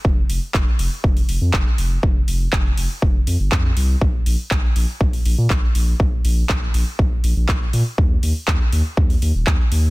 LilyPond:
<<
  \new Staff \with { instrumentName = "Sub bass" } { \clef bass \time 4/4 \key f \mixolydian \tempo 4 = 121 f,,8 f,,16 r16 f,,16 r16 f,,16 r16 f,,8 f,,16 f,16 f,,16 r16 f,,8 | f,,8 f,,8 f,,8 f,,16 r16 f,,8 f,16 g,,16 f,8 c,8 | bes,,8 bes,,16 r16 bes,,16 r16 bes,,16 r16 bes,,8 bes,,16 bes,16 bes,,16 r16 bes,,8 | bes,,8 bes,,8 bes,,8 bes,,16 r16 bes,,8 bes,,16 bes,,16 bes,,8 bes,16 r16 |
ees,8 ees,16 r16 ees,16 r16 ees,16 r16 ees,8 ees,16 ees,,16 ees,16 r16 ees,8 | }
  \new DrumStaff \with { instrumentName = "Drums" } \drummode { \time 4/4 bd8 hho8 <hc bd>8 hho8 bd16 hho16 hho8 <hc bd>8 hho8 | bd8 hho8 <hc bd>8 hho8 bd8 hho8 <hc bd>8 hho8 | bd8 hho8 <hc bd>8 hho8 bd16 hho16 hho8 <hc bd>8 hho8 | bd8 hho8 <hc bd>8 hho8 bd8 hho8 <hc bd>8 hho8 |
bd8 hho8 <hc bd>8 hho8 bd16 hho16 hho8 <hc bd>8 hho8 | }
>>